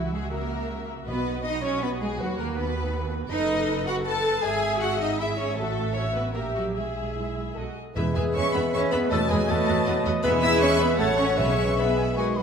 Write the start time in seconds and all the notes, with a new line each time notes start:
Already playing: C#2 E3 E4 F#4 E5
0.14 G#3 G#4
0.33 A#3 A#4
1.07 B1 B2 B3 F#4 B4 D#5
1.44 D#4 D#5
1.63 C#4 C#5
1.82 B3 B4
2.00 G#3 G#4
2.19 D#2 F#3 F#4 B4
2.38 A#3 A#4
2.56 B3 B4
3.31 F#1 D#4 A4 B4 D#5
3.87 F#4 F#5
4.06 A4 B4 A5
4.43 G#1 G#4 E5 G#5
4.80 F#4 F#5
5.01 D#4 D#5
5.20 E4 G#4 E5
5.38 C#4 C#5
5.57 A1 A3 F#4 A4 E5
5.95 C#4 F#4 C#5 E5
6.14 B3 B4
6.34 A#1 A#3 G4 A#4 E5
6.55 F#3 F#4
6.74 B1 G#3 G#4 E5
7.16 E4
7.54 B1 F#4 A4 D#5
7.76 G#4
7.95 E2 E3 G#3 E4 G#4 B4 E5
8.15 E2 G#3 G#4 B4 E5 G#5
8.34 E2 C#4 G#4 B4 C#5 E5 C#6
8.54 E2 B3 G#4 B4 E5 B5
8.73 E2 C#4 G#4 B4 C#5 E5 C#6
8.92 E2 B3 G#4 B4 E5 B5
9.11 E2 F#3 A3 F#4 A4 B4 D#5 A5
9.29 E2 G#3 F#4 G#4 B4 D#5 G#5
9.48 E2 A3 F#4 A4 B4 D#5 A5
9.66 E2 F#4 B4 D#5
9.85 E2 F#4 B4 D#5
10.04 E2 F#4 B4 D#5
10.23 E2 G#3 B3 G#4 B4 E5 B5
10.42 E4 E5 E6
10.61 C#4 C#5 C#6
10.80 B3 B4 B5
10.98 A1 F#3 A3 A4 C#5 F#5 A5
11.18 C#4 C#5 C#6
11.37 B1 B2 G#3 C#4 G#4 B4 C#5 E5 C#6
11.77 B3 G#4 B4 E5 B5
11.97 G#5
12.16 D#3 G#3 F#4 G#4 B4 D#5 G#5 C#6
12.36 F#3 F#4 F#5 B5